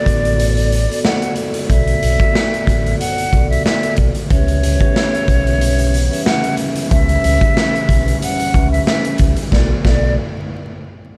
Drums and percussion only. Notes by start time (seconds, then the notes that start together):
0.06 kick, closed hi-hat
0.25 closed hi-hat
0.40 closed hi-hat
0.57 closed hi-hat
0.72 closed hi-hat
0.91 closed hi-hat
1.05 snare
1.22 closed hi-hat
1.36 closed hi-hat
1.54 closed hi-hat
1.70 kick, closed hi-hat
1.87 closed hi-hat
2.03 closed hi-hat
2.20 kick, closed hi-hat
2.35 snare
2.54 closed hi-hat
2.67 kick, closed hi-hat
2.86 closed hi-hat
3.01 closed hi-hat
3.18 closed hi-hat
3.33 kick, closed hi-hat
3.52 closed hi-hat
3.66 snare
3.83 closed hi-hat
3.96 kick, closed hi-hat
4.15 closed hi-hat
4.30 kick, closed hi-hat
4.48 closed hi-hat
4.63 closed hi-hat
4.80 kick, closed hi-hat
4.96 snare
5.15 closed hi-hat
5.28 kick, closed hi-hat
5.47 closed hi-hat
5.61 closed hi-hat
5.78 closed hi-hat
5.94 closed hi-hat
6.13 closed hi-hat
6.26 snare
6.44 closed hi-hat
6.57 closed hi-hat
6.75 closed hi-hat
6.91 kick, closed hi-hat
7.09 closed hi-hat
7.24 closed hi-hat
7.41 kick, closed hi-hat
7.57 snare
7.75 closed hi-hat
7.89 kick, closed hi-hat
8.08 closed hi-hat
8.22 closed hi-hat
8.39 closed hi-hat
8.54 kick, closed hi-hat
8.74 closed hi-hat
8.87 snare
9.05 closed hi-hat
9.18 kick, closed hi-hat
9.36 closed hi-hat
9.52 kick, snare
9.85 kick, snare